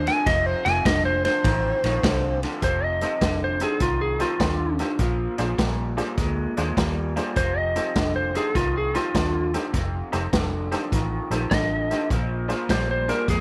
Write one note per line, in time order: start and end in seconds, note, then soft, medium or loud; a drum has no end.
0.07 0.24 F2 medium
0.07 0.25 D3 medium
0.07 0.26 G#5 loud
0.07 snare soft
0.07 ride medium
0.26 0.53 F1 loud
0.26 0.61 F2 medium
0.26 0.62 C3 loud
0.26 0.46 D#5 loud
0.26 kick medium
0.26 snare soft
0.26 ride medium
0.46 0.65 C5 loud
0.65 0.79 F1 medium
0.65 0.83 F2 medium
0.65 0.84 C3 medium
0.65 0.84 G#5 loud
0.65 snare soft
0.65 ride medium
0.85 1.26 F1 medium
0.85 1.21 F2 medium
0.85 1.21 D3 loud
0.85 1.04 D#5 loud
0.85 kick medium
0.85 snare loud
0.85 ride medium
1.05 1.24 C5 loud
1.25 1.43 F2 medium
1.25 1.43 D3 medium
1.25 2.39 C5 loud
1.25 snare soft
1.25 ride medium
1.44 1.71 A1 loud
1.44 1.80 F2 medium
1.44 1.80 D#3 loud
1.44 kick medium
1.44 snare soft
1.44 ride medium
1.84 1.97 A#1 medium
1.84 2.02 F2 medium
1.84 2.02 D#3 loud
1.84 snare soft
1.84 ride medium
2.03 2.44 C2 loud
2.03 2.39 F2 loud
2.03 2.39 D3 loud
2.03 kick medium
2.03 snare loud
2.03 ride medium
2.43 2.61 F2 medium
2.43 2.61 D3 medium
2.43 snare soft
2.43 ride medium
2.62 3.03 F1 medium
2.62 2.98 F2 medium
2.62 2.98 C3 medium
2.62 2.84 C5 medium
2.62 kick medium
2.62 snare soft
2.62 closed hi-hat medium
2.84 3.41 D#5 medium
3.01 3.20 F2 medium
3.01 3.20 C3 medium
3.01 3.12 D#4 medium
3.01 3.12 G4 medium
3.01 3.12 A4 medium
3.01 3.12 C5 medium
3.01 snare soft
3.01 closed hi-hat medium
3.21 3.62 F1 medium
3.21 3.57 F2 medium
3.21 3.57 D3 medium
3.21 kick medium
3.21 snare loud
3.21 closed hi-hat medium
3.44 3.62 C5 medium
3.60 3.79 F2 medium
3.60 3.79 D3 medium
3.60 3.71 D#4 medium
3.60 3.71 G4 medium
3.60 3.81 G#4 medium
3.60 3.71 A4 medium
3.60 3.71 C5 medium
3.60 snare soft
3.60 closed hi-hat medium
3.80 4.22 C2 medium
3.80 4.16 F2 medium
3.80 4.16 D#3 medium
3.80 4.01 F4 medium
3.80 kick medium
3.80 snare soft
3.80 closed hi-hat medium
4.01 4.20 G#4 medium
4.19 4.38 F2 medium
4.19 4.39 D#3 medium
4.19 4.30 D#4 medium
4.19 4.78 F4 medium
4.19 4.30 G4 medium
4.19 4.30 A4 medium
4.19 4.30 C5 medium
4.19 snare soft
4.19 closed hi-hat medium
4.40 4.81 D#2 medium
4.40 4.75 F2 medium
4.40 4.76 D3 medium
4.40 kick medium
4.40 snare loud
4.40 closed hi-hat medium
4.79 4.97 F2 medium
4.79 4.98 D3 medium
4.79 4.90 D#4 medium
4.79 4.90 G4 medium
4.79 4.90 A4 medium
4.79 4.90 C5 medium
4.79 snare soft
4.79 closed hi-hat medium
4.99 5.26 A#1 medium
4.99 5.35 A#2 medium
4.99 5.35 F3 medium
4.99 kick medium
4.99 snare soft
4.99 closed hi-hat medium
5.38 5.53 A#1 medium
5.38 5.57 A#2 medium
5.38 5.57 F3 medium
5.38 5.48 D4 medium
5.38 5.49 F4 medium
5.38 5.49 G#4 medium
5.38 5.49 C5 medium
5.38 snare soft
5.38 closed hi-hat medium
5.58 5.99 A#1 medium
5.58 5.94 A#2 medium
5.58 5.94 G3 medium
5.58 kick medium
5.58 snare loud
5.58 closed hi-hat medium
5.97 6.16 A#2 medium
5.97 6.16 G3 medium
5.97 6.08 D4 medium
5.97 6.08 F4 medium
5.97 6.08 G#4 medium
5.97 6.08 C5 medium
5.97 snare soft
5.97 closed hi-hat medium
6.18 6.45 D2 medium
6.18 6.53 A#2 medium
6.18 6.53 G#3 medium
6.18 kick medium
6.18 snare soft
6.18 closed hi-hat medium
6.57 6.72 D#2 medium
6.57 6.75 A#2 medium
6.57 6.76 G#3 medium
6.57 6.67 D4 medium
6.57 6.67 F4 medium
6.57 6.68 G#4 medium
6.57 6.68 C5 medium
6.57 snare soft
6.57 closed hi-hat medium
6.77 7.18 D#2 medium
6.77 7.12 A#2 medium
6.77 7.12 G3 medium
6.77 kick medium
6.77 snare loud
6.77 closed hi-hat medium
7.16 7.34 A#2 medium
7.16 7.35 G3 medium
7.16 7.26 D4 medium
7.16 7.26 F4 medium
7.16 7.27 G#4 medium
7.16 7.27 C5 medium
7.16 snare soft
7.16 closed hi-hat medium
7.36 7.78 F1 medium
7.36 7.72 F2 medium
7.36 7.72 C3 medium
7.36 7.58 C5 medium
7.36 kick medium
7.36 snare soft
7.36 closed hi-hat medium
7.58 8.15 D#5 medium
7.76 7.94 F2 medium
7.76 7.94 C3 medium
7.76 7.86 D#4 medium
7.76 7.86 G4 medium
7.76 7.86 A4 medium
7.76 7.86 C5 medium
7.76 snare soft
7.76 closed hi-hat medium
7.95 8.37 F1 medium
7.95 8.31 F2 medium
7.95 8.31 D3 medium
7.95 kick medium
7.95 snare loud
7.95 closed hi-hat medium
8.16 8.35 C5 medium
8.35 8.53 F2 medium
8.35 8.53 D3 medium
8.35 8.45 D#4 medium
8.35 8.46 G4 medium
8.35 8.55 G#4 medium
8.35 8.46 A4 medium
8.35 8.46 C5 medium
8.35 snare soft
8.35 closed hi-hat medium
8.55 8.96 C2 medium
8.55 8.90 F2 medium
8.55 8.90 D#3 medium
8.55 8.75 F4 medium
8.55 kick medium
8.55 snare soft
8.55 closed hi-hat medium
8.78 8.95 G#4 medium
8.94 9.12 F2 medium
8.94 9.12 D#3 medium
8.94 9.04 D#4 medium
8.94 9.53 F4 loud
8.94 9.05 G4 medium
8.94 9.05 A4 medium
8.94 9.05 C5 medium
8.94 snare soft
8.94 closed hi-hat medium
9.14 9.55 D#2 medium
9.14 9.49 F2 medium
9.14 9.50 D3 medium
9.14 kick medium
9.14 snare loud
9.14 closed hi-hat medium
9.54 9.72 F2 medium
9.54 9.72 D3 medium
9.54 9.64 D#4 medium
9.54 9.64 G4 medium
9.54 9.64 A4 medium
9.54 9.64 C5 medium
9.54 snare soft
9.54 closed hi-hat medium
9.73 10.01 F1 medium
9.73 10.09 F2 medium
9.73 10.09 C3 medium
9.73 kick medium
9.73 snare soft
9.73 closed hi-hat medium
10.12 10.27 F1 medium
10.12 10.31 F2 medium
10.12 10.31 C3 medium
10.12 10.23 D#4 medium
10.12 10.22 G4 medium
10.12 10.23 A4 medium
10.12 10.23 C5 medium
10.12 snare soft
10.12 closed hi-hat medium
10.33 10.74 F1 medium
10.33 10.68 F2 medium
10.33 10.68 D3 medium
10.33 kick medium
10.33 snare loud
10.33 closed hi-hat medium
10.71 10.90 F2 medium
10.71 10.91 D3 medium
10.71 10.82 D#4 medium
10.71 10.82 G4 medium
10.71 10.82 A4 medium
10.71 10.82 C5 medium
10.71 snare soft
10.71 closed hi-hat medium
10.92 11.19 A1 medium
10.92 11.28 F2 medium
10.92 11.28 D#3 medium
10.92 kick medium
10.92 snare soft
10.92 closed hi-hat medium
11.30 11.45 A#1 medium
11.30 11.49 F2 medium
11.30 11.50 D#3 medium
11.30 11.41 D#4 medium
11.30 11.41 G4 medium
11.30 11.41 A4 medium
11.30 11.41 C5 medium
11.30 snare soft
11.30 closed hi-hat medium
11.51 11.92 A1 medium
11.51 11.87 F2 medium
11.51 11.87 D3 medium
11.51 12.08 D#5 medium
11.51 kick medium
11.51 snare loud
11.51 closed hi-hat medium
11.90 12.09 F2 medium
11.90 12.09 D3 medium
11.90 12.00 D#4 medium
11.90 12.01 G4 medium
11.90 12.00 A4 medium
11.90 12.01 C5 medium
11.90 snare soft
11.90 closed hi-hat medium
12.10 12.51 A#1 medium
12.10 12.46 A#2 medium
12.10 12.46 F3 medium
12.10 kick medium
12.10 snare soft
12.10 closed hi-hat medium
12.48 12.68 A#2 medium
12.48 12.68 F3 medium
12.48 12.59 D4 medium
12.48 12.59 F4 medium
12.48 12.59 G#4 medium
12.48 12.59 C5 medium
12.48 snare soft
12.48 closed hi-hat medium
12.69 13.10 A#1 medium
12.69 13.05 G3 medium
12.69 12.89 C5 medium
12.69 kick medium
12.69 snare loud
12.69 closed hi-hat medium
12.91 13.09 C5 medium
13.08 13.27 A#2 medium
13.08 13.27 G3 medium
13.08 13.18 D4 medium
13.08 13.18 F4 medium
13.08 13.19 G#4 medium
13.08 13.28 A#4 medium
13.08 13.19 C5 medium
13.08 snare soft
13.08 closed hi-hat medium
13.28 13.40 F2 medium
13.28 13.40 A#2 medium
13.28 13.40 G#3 medium
13.28 13.40 G#4 medium
13.28 kick medium
13.28 snare soft
13.28 closed hi-hat medium